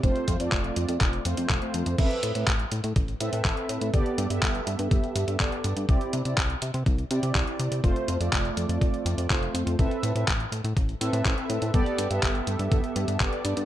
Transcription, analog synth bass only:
X:1
M:4/4
L:1/16
Q:1/4=123
K:Am
V:1 name="Analog synth bass" clef=bass
F,,, z F,, F,, F,,,2 F,, F,, F,,,2 F,, F,, F,,, z F,, F,, | A,,, z A,, A,, A,,,2 A,, A,, A,,,2 A,, A,, A,,, z A,, A,, | G,,, z G,, G,, G,,,2 G,, G,, G,,, z G,, G,, G,,, z G,, G,, | C,, z C, C, C,,2 C, C, C,,2 C, C, C,, z C, C, |
F,,, z F,, F,, F,,,2 F,, F,, F,,, z F,, F,, F,,,2 F,, F,, | A,,, z A,, A,, A,,,2 A,, A,, A,,,2 A,, A,, A,,, z A,, A,, | G,,, z G,, G,, G,,,2 G,, G,, G,,, z G,, G,, G,,, z G,, G,, |]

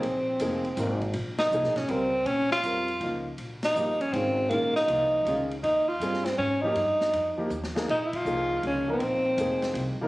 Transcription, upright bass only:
X:1
M:3/4
L:1/8
Q:"Swing" 1/4=160
K:Bbdor
V:1 name="Upright bass" clef=bass
B,,,2 F,,,2 A,,,2 | B,,,2 (3C,, B,,, A,,, D,,2 | B,,2 F,,2 D,,2 | B,,,2 G,,,2 A,,,2 |
B,,,2 C,,2 D,,2 | E,,2 G,,2 A,,2 | G,,2 F,,2 E,,2 | B,,,2 C,,2 D,,2 |
B,,,2 F,,,2 C,, z |]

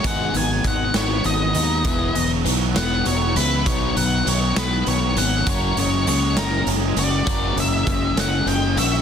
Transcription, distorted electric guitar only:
X:1
M:6/8
L:1/8
Q:3/8=66
K:F#mix
V:1 name="Distorted electric guitar" clef=bass
G,, D, G, B, G, D | E, F, F, B, F, E | B,, D, D, B, D, C | F, G, G, C G, F |
F, G, G, C G, F |]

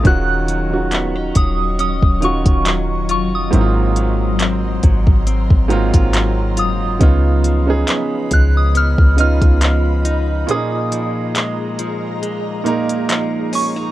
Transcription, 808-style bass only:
X:1
M:4/4
L:1/16
Q:"Swing 16ths" 1/4=69
K:Ebm
V:1 name="808-style bass" clef=bass
E,,,6 E,,,3 E,,,2 E,,,3 F,,,2 | A,,,6 A,,, A,,,2 A,,,2 A,,,3 G,,,2 | D,,4 z2 D,,3 D,,2 D,,4- D,, | z16 |]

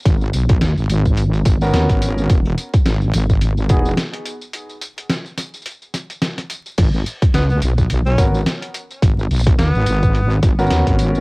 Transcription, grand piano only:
X:1
M:4/4
L:1/16
Q:"Swing 16ths" 1/4=107
K:G#m
V:1 name="Grand piano"
z8 z3 [B,CFA]4- [B,CFA] | z8 z2 [B,DFG] z4 z | z16 | z8 z2 [B,CFA] z4 z |
z8 z3 [B,CFA]4- [B,CFA] |]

